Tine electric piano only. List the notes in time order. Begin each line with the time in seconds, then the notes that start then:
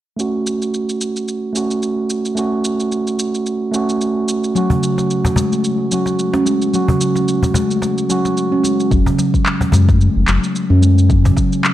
0.16 A3 C#4 F#4
1.53 A3 C#4
1.57 F#4
2.35 A3 C#4
2.39 F#4
3.72 A3 C#4 F#4
4.56 C#4 F#4
5.92 C#4 F#4
6.73 C#4 F#4
8.10 C#4 F#4